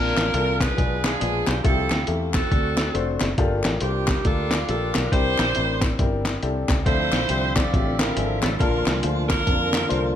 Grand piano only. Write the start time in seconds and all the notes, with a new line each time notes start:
Already playing: A#2 A#3 C4 D4 F4 A5
0.34 A#3 C4 D4 F4 A4
0.77 B2 G#3 B3 D4 F4 G#4
1.20 G#3 B3 D4 F4 G#4
1.64 C3 F3 A3 C4 F#4 E5
1.69 G4
2.07 A3 C4 G4 A4 E5
2.51 D3 A3 C4 D4 F#4 A4
2.94 A3 C4 D4 F#4 C5
3.38 G2 A#3 D4 F4 G4 A4
3.81 A3 D4 F4 G4 C5
3.86 A#3
4.25 A3 D4 F4 G4 A4
4.30 A#3
4.68 A3 D4 F4 G4 A4
4.74 A#3
5.12 C3 C4 D4 E4 G4 A#4
5.55 C4 D4 E4 G4 A#4
5.98 C4 D4 E4 G4 A#4
6.43 C4 D4 E4 G4 A4
6.86 D3 F3 C4 D4 A4 E5
7.29 F3 C4 D4 G4 E5
7.73 C4 D4 F4 F#4 E5
7.79 G4
8.16 F3 C4 D4 G#4 E5
8.22 A4
8.60 A#2 A#3 D4 F4 A#4 A5
9.04 A#3 D4 F4 A4 C5
9.46 A#3 D4 F4 A#4 A5
9.89 A#3 D4 F4 A4 C5